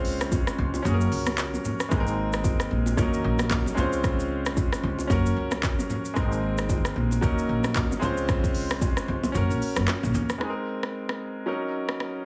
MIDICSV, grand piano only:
0, 0, Header, 1, 2, 480
1, 0, Start_track
1, 0, Key_signature, -5, "major"
1, 0, Tempo, 530973
1, 1730, Time_signature, 4, 2, 24, 8
1, 11074, End_track
2, 0, Start_track
2, 0, Title_t, "Grand piano"
2, 0, Program_c, 0, 0
2, 0, Control_c, 0, 64, 127
2, 0, Note_on_c, 0, 56, 78
2, 0, Note_on_c, 0, 60, 71
2, 0, Note_on_c, 0, 61, 74
2, 0, Note_on_c, 0, 65, 75
2, 0, Note_on_c, 0, 72, 86
2, 732, Note_off_c, 0, 61, 0
2, 734, Note_off_c, 0, 56, 0
2, 739, Note_off_c, 0, 60, 0
2, 746, Note_on_c, 0, 61, 76
2, 751, Note_off_c, 0, 65, 0
2, 769, Note_on_c, 0, 66, 74
2, 781, Control_c, 0, 64, 0
2, 786, Note_off_c, 0, 72, 0
2, 791, Note_on_c, 0, 68, 70
2, 847, Note_off_c, 0, 68, 0
2, 848, Note_on_c, 0, 70, 83
2, 927, Control_c, 0, 64, 127
2, 1699, Note_off_c, 0, 61, 0
2, 1706, Note_on_c, 0, 56, 72
2, 1710, Note_off_c, 0, 66, 0
2, 1717, Note_on_c, 0, 58, 68
2, 1729, Note_on_c, 0, 60, 68
2, 1740, Note_on_c, 0, 63, 72
2, 1741, Control_c, 0, 64, 0
2, 1751, Note_off_c, 0, 70, 0
2, 1752, Note_on_c, 0, 68, 65
2, 1808, Note_off_c, 0, 68, 0
2, 1809, Note_on_c, 0, 70, 86
2, 1880, Control_c, 0, 64, 127
2, 2659, Note_off_c, 0, 56, 0
2, 2664, Note_off_c, 0, 58, 0
2, 2671, Note_off_c, 0, 60, 0
2, 2676, Note_off_c, 0, 63, 0
2, 2678, Note_on_c, 0, 53, 62
2, 2683, Note_on_c, 0, 58, 70
2, 2687, Note_off_c, 0, 70, 0
2, 2689, Note_on_c, 0, 61, 72
2, 2694, Note_on_c, 0, 63, 72
2, 2700, Note_on_c, 0, 70, 85
2, 2702, Control_c, 0, 64, 0
2, 2735, Note_on_c, 0, 54, 79
2, 2751, Note_off_c, 0, 53, 0
2, 2877, Control_c, 0, 64, 127
2, 3386, Note_on_c, 0, 56, 81
2, 3396, Note_off_c, 0, 61, 0
2, 3399, Note_on_c, 0, 60, 71
2, 3407, Note_off_c, 0, 58, 0
2, 3410, Note_on_c, 0, 61, 72
2, 3412, Note_off_c, 0, 63, 0
2, 3415, Note_off_c, 0, 70, 0
2, 3420, Note_on_c, 0, 65, 75
2, 3423, Control_c, 0, 64, 0
2, 3432, Note_off_c, 0, 54, 0
2, 3432, Note_on_c, 0, 72, 90
2, 3603, Control_c, 0, 64, 127
2, 4574, Note_off_c, 0, 56, 0
2, 4574, Note_off_c, 0, 61, 0
2, 4580, Note_off_c, 0, 60, 0
2, 4587, Note_on_c, 0, 61, 77
2, 4591, Note_off_c, 0, 65, 0
2, 4597, Note_off_c, 0, 72, 0
2, 4609, Note_on_c, 0, 66, 74
2, 4624, Control_c, 0, 64, 0
2, 4632, Note_on_c, 0, 70, 88
2, 4752, Control_c, 0, 64, 127
2, 5539, Note_off_c, 0, 61, 0
2, 5548, Note_on_c, 0, 56, 75
2, 5551, Note_off_c, 0, 66, 0
2, 5559, Note_on_c, 0, 58, 69
2, 5562, Note_off_c, 0, 70, 0
2, 5571, Note_on_c, 0, 60, 67
2, 5583, Note_on_c, 0, 63, 69
2, 5584, Control_c, 0, 64, 0
2, 5593, Note_on_c, 0, 70, 81
2, 5758, Control_c, 0, 64, 127
2, 6500, Note_off_c, 0, 56, 0
2, 6505, Note_off_c, 0, 58, 0
2, 6512, Note_off_c, 0, 60, 0
2, 6517, Note_off_c, 0, 63, 0
2, 6519, Note_on_c, 0, 54, 80
2, 6523, Note_off_c, 0, 70, 0
2, 6526, Note_on_c, 0, 58, 74
2, 6532, Note_on_c, 0, 61, 72
2, 6537, Note_on_c, 0, 63, 74
2, 6542, Control_c, 0, 64, 0
2, 6543, Note_on_c, 0, 70, 89
2, 6697, Control_c, 0, 64, 127
2, 7228, Note_on_c, 0, 56, 79
2, 7237, Note_off_c, 0, 61, 0
2, 7240, Note_on_c, 0, 60, 73
2, 7245, Note_off_c, 0, 54, 0
2, 7248, Note_off_c, 0, 58, 0
2, 7250, Note_on_c, 0, 61, 74
2, 7254, Note_off_c, 0, 63, 0
2, 7256, Note_off_c, 0, 70, 0
2, 7261, Control_c, 0, 64, 0
2, 7261, Note_on_c, 0, 65, 74
2, 7273, Note_on_c, 0, 72, 93
2, 7421, Control_c, 0, 64, 127
2, 8413, Note_off_c, 0, 61, 0
2, 8415, Note_off_c, 0, 56, 0
2, 8421, Note_off_c, 0, 60, 0
2, 8427, Note_on_c, 0, 61, 78
2, 8432, Note_off_c, 0, 65, 0
2, 8438, Note_off_c, 0, 72, 0
2, 8449, Note_on_c, 0, 66, 70
2, 8464, Control_c, 0, 64, 0
2, 8471, Note_on_c, 0, 70, 83
2, 8611, Control_c, 0, 64, 127
2, 9379, Note_off_c, 0, 61, 0
2, 9385, Note_on_c, 0, 56, 67
2, 9390, Note_off_c, 0, 66, 0
2, 9401, Note_on_c, 0, 60, 59
2, 9402, Note_off_c, 0, 70, 0
2, 9416, Note_on_c, 0, 63, 60
2, 9423, Control_c, 0, 64, 0
2, 9431, Note_on_c, 0, 68, 62
2, 9487, Note_off_c, 0, 68, 0
2, 9489, Note_on_c, 0, 70, 73
2, 9606, Control_c, 0, 64, 127
2, 10338, Note_off_c, 0, 56, 0
2, 10346, Note_off_c, 0, 60, 0
2, 10354, Note_off_c, 0, 63, 0
2, 10358, Note_on_c, 0, 54, 68
2, 10364, Note_on_c, 0, 61, 65
2, 10366, Note_off_c, 0, 70, 0
2, 10372, Note_on_c, 0, 63, 65
2, 10380, Note_on_c, 0, 70, 76
2, 10383, Control_c, 0, 64, 0
2, 10537, Control_c, 0, 64, 127
2, 11068, Note_off_c, 0, 61, 0
2, 11074, Note_off_c, 0, 54, 0
2, 11074, Note_off_c, 0, 63, 0
2, 11074, Note_off_c, 0, 70, 0
2, 11074, End_track
0, 0, End_of_file